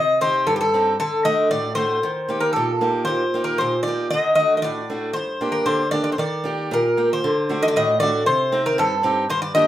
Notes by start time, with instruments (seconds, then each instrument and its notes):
Already playing: steel-string acoustic guitar C3, bouzouki D#5
0.21 steel-string acoustic guitar C4 D#4 G4, bouzouki C5
0.47 steel-string acoustic guitar G2, bouzouki A4
0.56 bouzouki G4
0.61 bouzouki A4
0.74 steel-string acoustic guitar C4 D#4 G4
1.00 steel-string acoustic guitar D3, bouzouki A4
1.25 steel-string acoustic guitar A3 D4 F#4, bouzouki D#5
1.51 steel-string acoustic guitar A2, bouzouki D5
1.75 steel-string acoustic guitar A3 D4 F#4, bouzouki C5
2.03 steel-string acoustic guitar D#3
2.29 steel-string acoustic guitar A#3 D#4 G4
2.40 bouzouki A#4
2.53 steel-string acoustic guitar A#2, bouzouki A4
2.81 steel-string acoustic guitar A#3 D#4 G4
3.05 steel-string acoustic guitar A#2, bouzouki C5
3.34 steel-string acoustic guitar A#3 D#4 G4
3.44 bouzouki A#4
3.58 steel-string acoustic guitar A#2, bouzouki C5
3.83 bouzouki D5
3.87 steel-string acoustic guitar A#3 D#4 G4
4.10 steel-string acoustic guitar D3, bouzouki D#5
4.35 steel-string acoustic guitar A3 D4, bouzouki D#5
4.40 steel-string acoustic guitar F#4
4.57 bouzouki D#5
4.62 steel-string acoustic guitar A2, bouzouki D5
4.90 steel-string acoustic guitar A3 D4 F#4
5.13 steel-string acoustic guitar G2, bouzouki C5
5.41 steel-string acoustic guitar A#3 D4 G4
5.52 bouzouki A#4
5.66 steel-string acoustic guitar D3, bouzouki C5
5.91 steel-string acoustic guitar A#3 D4 G4, bouzouki D5
6.04 bouzouki D5
6.12 bouzouki C5
6.18 steel-string acoustic guitar D#3, bouzouki D5
6.44 steel-string acoustic guitar A#3 D#4 G4
6.71 steel-string acoustic guitar A#2, bouzouki A#4
6.97 steel-string acoustic guitar A#3 D#4 G4
7.13 bouzouki C5
7.24 steel-string acoustic guitar D3
7.49 steel-string acoustic guitar A3 D4 F#4
7.63 bouzouki D#5
7.68 bouzouki D5
7.76 steel-string acoustic guitar A2, bouzouki D#5
8.00 steel-string acoustic guitar A3 D4 F#4, bouzouki D5
8.26 steel-string acoustic guitar C3, bouzouki C5
8.52 steel-string acoustic guitar C4 D#4 G4
8.66 bouzouki A#4
8.78 steel-string acoustic guitar G2, bouzouki A4
9.03 steel-string acoustic guitar C4 D#4 G4
9.30 steel-string acoustic guitar G2, bouzouki C5
9.42 bouzouki D5
9.55 steel-string acoustic guitar A#3 D4 G4, bouzouki D#5